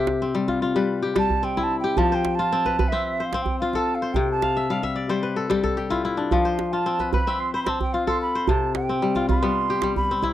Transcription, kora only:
Already playing: C3 C4 F4 G4 A4 C5
0.22 C4
0.35 G3
0.48 F4
0.62 F4
0.76 G3 B4
1.02 G4
1.15 G3
1.43 C4
1.57 E4
1.84 G4
1.98 F3
2.12 C5
2.39 F4
2.52 C4
2.66 B4
2.79 B4
2.92 C4 E5
3.20 C5
3.34 C4
3.62 F4
3.75 A4
4.02 C5
4.16 C3
4.43 F5
4.57 E5
4.70 G3 F5
4.83 E5
4.96 D5
5.09 G3 C5
5.23 B4
5.36 A4
5.50 G3 G4
5.64 A4
5.77 G4
5.90 E4 F4
6.05 E4
6.17 D4
6.32 F3
6.45 C5
6.73 F4
6.86 C4
7.00 B4
7.14 B4
7.27 C4 E5
7.54 C5
7.67 C4
7.94 F4
8.07 A4
8.35 C5
8.49 C3
8.89 C4
9.02 G3
9.16 F4
9.29 F4
9.42 G3 B3
9.70 G4
9.83 G3
10.11 C4
10.23 E4

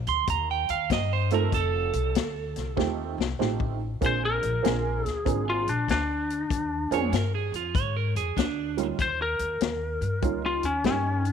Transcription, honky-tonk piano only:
1.31 A3 C4 D#4 F4 A4
2.77 A3 C4 D#4 F4 G4
3.39 A3 C4 D#4 F4 G4
4.01 A#3 C4 D4 F4 G#4
4.63 A#3 C4 D4 F4 G#4
5.25 A#3 C4 D4 F4 G#4
6.91 A#3 C4 D4 F4 G#4
8.77 G3 A#3 C#4 D#4 F4
10.22 G3 A#3 C#4 D#4 F4
10.85 G3 A#3 C#4 D#4 G4

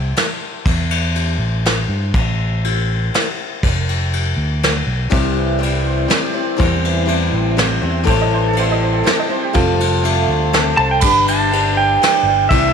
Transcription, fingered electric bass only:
Already playing: C2
0.66 E2
1.38 A1
1.89 G2
2.14 A1
3.63 F1
4.37 D2
4.87 B1
5.12 C2
6.60 E2
7.33 A1
7.83 E2
8.07 A1
9.55 F1
10.28 D2
10.77 C2
11.02 G1
12.23 G1
12.50 C2

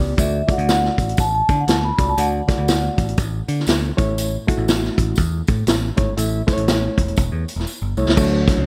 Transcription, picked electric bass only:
0.00 C#2
0.18 D2
0.58 D2
0.98 A1
1.18 A1
1.49 D3
1.68 D2
1.98 C#2
2.18 D2
2.58 D2
2.98 A1
3.18 A1
3.48 D3
3.67 D2
3.98 A1
4.58 A1
4.98 A1
5.18 E2
5.49 A2
5.67 A1
5.98 G#1
6.18 A1
6.57 A1
6.98 E1
7.18 E1
7.32 E2
7.56 E1
7.82 G1
7.97 C2
8.08 C#2
8.17 D2
8.57 C#2

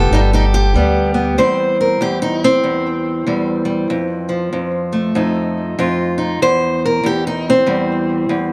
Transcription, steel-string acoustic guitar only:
Already playing: G3 B3 G4 A4
0.13 G3 D#4 G4
0.33 D#4 G4
0.54 G4
0.76 G3 B3
1.14 B3
1.38 E2 G3 C4 C5
1.81 A#4
2.01 E2 G4
2.22 D#4
2.44 C4
2.64 E2
3.27 E2 G3
3.65 G3
3.90 F2
4.29 F3
4.53 F2
4.93 A3
5.15 F2 D#4
5.79 F2 F4
6.18 D#4
6.42 E2 C5
6.86 A#4
7.04 E2 G4
7.27 D#4
7.50 C4
7.66 E2 G3
8.29 E2

